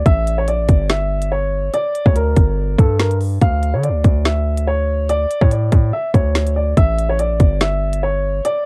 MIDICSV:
0, 0, Header, 1, 4, 480
1, 0, Start_track
1, 0, Tempo, 419580
1, 66, Time_signature, 4, 2, 24, 8
1, 9902, End_track
2, 0, Start_track
2, 0, Title_t, "Upright piano"
2, 0, Program_c, 0, 0
2, 66, Note_on_c, 0, 76, 98
2, 411, Note_off_c, 0, 76, 0
2, 435, Note_on_c, 0, 73, 85
2, 520, Note_off_c, 0, 73, 0
2, 549, Note_on_c, 0, 74, 83
2, 999, Note_off_c, 0, 74, 0
2, 1026, Note_on_c, 0, 76, 88
2, 1477, Note_off_c, 0, 76, 0
2, 1506, Note_on_c, 0, 73, 82
2, 1958, Note_off_c, 0, 73, 0
2, 1987, Note_on_c, 0, 74, 108
2, 2332, Note_off_c, 0, 74, 0
2, 2352, Note_on_c, 0, 73, 81
2, 2439, Note_off_c, 0, 73, 0
2, 2467, Note_on_c, 0, 70, 79
2, 3144, Note_off_c, 0, 70, 0
2, 3187, Note_on_c, 0, 69, 85
2, 3369, Note_off_c, 0, 69, 0
2, 3427, Note_on_c, 0, 70, 73
2, 3609, Note_off_c, 0, 70, 0
2, 3906, Note_on_c, 0, 77, 108
2, 4251, Note_off_c, 0, 77, 0
2, 4275, Note_on_c, 0, 73, 67
2, 4360, Note_off_c, 0, 73, 0
2, 4387, Note_on_c, 0, 74, 75
2, 4838, Note_off_c, 0, 74, 0
2, 4867, Note_on_c, 0, 76, 78
2, 5318, Note_off_c, 0, 76, 0
2, 5347, Note_on_c, 0, 73, 85
2, 5798, Note_off_c, 0, 73, 0
2, 5828, Note_on_c, 0, 74, 113
2, 6173, Note_off_c, 0, 74, 0
2, 6193, Note_on_c, 0, 73, 81
2, 6279, Note_off_c, 0, 73, 0
2, 6307, Note_on_c, 0, 74, 72
2, 6758, Note_off_c, 0, 74, 0
2, 6784, Note_on_c, 0, 76, 86
2, 6967, Note_off_c, 0, 76, 0
2, 7028, Note_on_c, 0, 73, 78
2, 7478, Note_off_c, 0, 73, 0
2, 7506, Note_on_c, 0, 74, 79
2, 7688, Note_off_c, 0, 74, 0
2, 7748, Note_on_c, 0, 76, 101
2, 8093, Note_off_c, 0, 76, 0
2, 8115, Note_on_c, 0, 73, 81
2, 8200, Note_off_c, 0, 73, 0
2, 8228, Note_on_c, 0, 74, 89
2, 8679, Note_off_c, 0, 74, 0
2, 8706, Note_on_c, 0, 76, 88
2, 9158, Note_off_c, 0, 76, 0
2, 9187, Note_on_c, 0, 73, 84
2, 9638, Note_off_c, 0, 73, 0
2, 9666, Note_on_c, 0, 74, 109
2, 9902, Note_off_c, 0, 74, 0
2, 9902, End_track
3, 0, Start_track
3, 0, Title_t, "808-style bass"
3, 0, Program_c, 1, 38
3, 66, Note_on_c, 1, 33, 106
3, 546, Note_on_c, 1, 34, 98
3, 564, Note_off_c, 1, 33, 0
3, 673, Note_on_c, 1, 33, 98
3, 690, Note_off_c, 1, 34, 0
3, 781, Note_off_c, 1, 33, 0
3, 786, Note_on_c, 1, 31, 102
3, 1941, Note_off_c, 1, 31, 0
3, 2354, Note_on_c, 1, 38, 104
3, 2693, Note_off_c, 1, 38, 0
3, 2706, Note_on_c, 1, 31, 100
3, 3167, Note_off_c, 1, 31, 0
3, 3186, Note_on_c, 1, 43, 102
3, 3878, Note_off_c, 1, 43, 0
3, 3907, Note_on_c, 1, 38, 108
3, 4273, Note_on_c, 1, 50, 101
3, 4290, Note_off_c, 1, 38, 0
3, 4449, Note_on_c, 1, 38, 100
3, 4466, Note_off_c, 1, 50, 0
3, 4617, Note_off_c, 1, 38, 0
3, 4626, Note_on_c, 1, 38, 104
3, 6021, Note_off_c, 1, 38, 0
3, 6194, Note_on_c, 1, 45, 105
3, 6533, Note_off_c, 1, 45, 0
3, 6546, Note_on_c, 1, 45, 103
3, 6777, Note_off_c, 1, 45, 0
3, 7026, Note_on_c, 1, 38, 105
3, 7717, Note_off_c, 1, 38, 0
3, 7746, Note_on_c, 1, 33, 109
3, 8227, Note_on_c, 1, 34, 97
3, 8244, Note_off_c, 1, 33, 0
3, 8353, Note_on_c, 1, 33, 102
3, 8371, Note_off_c, 1, 34, 0
3, 8461, Note_off_c, 1, 33, 0
3, 8466, Note_on_c, 1, 31, 104
3, 9620, Note_off_c, 1, 31, 0
3, 9902, End_track
4, 0, Start_track
4, 0, Title_t, "Drums"
4, 66, Note_on_c, 9, 36, 118
4, 66, Note_on_c, 9, 42, 84
4, 181, Note_off_c, 9, 36, 0
4, 181, Note_off_c, 9, 42, 0
4, 311, Note_on_c, 9, 42, 67
4, 425, Note_off_c, 9, 42, 0
4, 546, Note_on_c, 9, 42, 79
4, 661, Note_off_c, 9, 42, 0
4, 785, Note_on_c, 9, 42, 84
4, 786, Note_on_c, 9, 36, 100
4, 899, Note_off_c, 9, 42, 0
4, 900, Note_off_c, 9, 36, 0
4, 1024, Note_on_c, 9, 42, 75
4, 1026, Note_on_c, 9, 38, 126
4, 1138, Note_off_c, 9, 42, 0
4, 1140, Note_off_c, 9, 38, 0
4, 1392, Note_on_c, 9, 42, 80
4, 1507, Note_off_c, 9, 42, 0
4, 1986, Note_on_c, 9, 42, 86
4, 2101, Note_off_c, 9, 42, 0
4, 2231, Note_on_c, 9, 42, 68
4, 2345, Note_off_c, 9, 42, 0
4, 2354, Note_on_c, 9, 36, 90
4, 2467, Note_on_c, 9, 42, 79
4, 2468, Note_off_c, 9, 36, 0
4, 2582, Note_off_c, 9, 42, 0
4, 2705, Note_on_c, 9, 42, 84
4, 2706, Note_on_c, 9, 36, 101
4, 2819, Note_off_c, 9, 42, 0
4, 2821, Note_off_c, 9, 36, 0
4, 3186, Note_on_c, 9, 36, 94
4, 3190, Note_on_c, 9, 42, 69
4, 3300, Note_off_c, 9, 36, 0
4, 3304, Note_off_c, 9, 42, 0
4, 3427, Note_on_c, 9, 38, 106
4, 3427, Note_on_c, 9, 42, 88
4, 3541, Note_off_c, 9, 38, 0
4, 3541, Note_off_c, 9, 42, 0
4, 3557, Note_on_c, 9, 42, 70
4, 3668, Note_on_c, 9, 46, 60
4, 3671, Note_off_c, 9, 42, 0
4, 3783, Note_off_c, 9, 46, 0
4, 3906, Note_on_c, 9, 42, 86
4, 3907, Note_on_c, 9, 36, 115
4, 4021, Note_off_c, 9, 36, 0
4, 4021, Note_off_c, 9, 42, 0
4, 4151, Note_on_c, 9, 42, 67
4, 4265, Note_off_c, 9, 42, 0
4, 4387, Note_on_c, 9, 42, 82
4, 4501, Note_off_c, 9, 42, 0
4, 4625, Note_on_c, 9, 42, 87
4, 4626, Note_on_c, 9, 36, 103
4, 4739, Note_off_c, 9, 42, 0
4, 4741, Note_off_c, 9, 36, 0
4, 4864, Note_on_c, 9, 42, 78
4, 4866, Note_on_c, 9, 38, 124
4, 4978, Note_off_c, 9, 42, 0
4, 4981, Note_off_c, 9, 38, 0
4, 5233, Note_on_c, 9, 42, 82
4, 5347, Note_off_c, 9, 42, 0
4, 5827, Note_on_c, 9, 42, 84
4, 5941, Note_off_c, 9, 42, 0
4, 6071, Note_on_c, 9, 42, 68
4, 6185, Note_off_c, 9, 42, 0
4, 6194, Note_on_c, 9, 36, 91
4, 6307, Note_on_c, 9, 42, 82
4, 6308, Note_off_c, 9, 36, 0
4, 6421, Note_off_c, 9, 42, 0
4, 6545, Note_on_c, 9, 42, 87
4, 6546, Note_on_c, 9, 36, 105
4, 6659, Note_off_c, 9, 42, 0
4, 6661, Note_off_c, 9, 36, 0
4, 7026, Note_on_c, 9, 36, 98
4, 7030, Note_on_c, 9, 42, 68
4, 7140, Note_off_c, 9, 36, 0
4, 7144, Note_off_c, 9, 42, 0
4, 7266, Note_on_c, 9, 38, 110
4, 7266, Note_on_c, 9, 42, 90
4, 7381, Note_off_c, 9, 38, 0
4, 7381, Note_off_c, 9, 42, 0
4, 7397, Note_on_c, 9, 42, 71
4, 7512, Note_off_c, 9, 42, 0
4, 7747, Note_on_c, 9, 36, 118
4, 7747, Note_on_c, 9, 42, 85
4, 7861, Note_off_c, 9, 36, 0
4, 7861, Note_off_c, 9, 42, 0
4, 7991, Note_on_c, 9, 42, 69
4, 8105, Note_off_c, 9, 42, 0
4, 8227, Note_on_c, 9, 42, 79
4, 8342, Note_off_c, 9, 42, 0
4, 8464, Note_on_c, 9, 42, 87
4, 8466, Note_on_c, 9, 36, 104
4, 8579, Note_off_c, 9, 42, 0
4, 8580, Note_off_c, 9, 36, 0
4, 8703, Note_on_c, 9, 42, 78
4, 8706, Note_on_c, 9, 38, 127
4, 8818, Note_off_c, 9, 42, 0
4, 8820, Note_off_c, 9, 38, 0
4, 9072, Note_on_c, 9, 42, 83
4, 9187, Note_off_c, 9, 42, 0
4, 9666, Note_on_c, 9, 42, 84
4, 9780, Note_off_c, 9, 42, 0
4, 9902, End_track
0, 0, End_of_file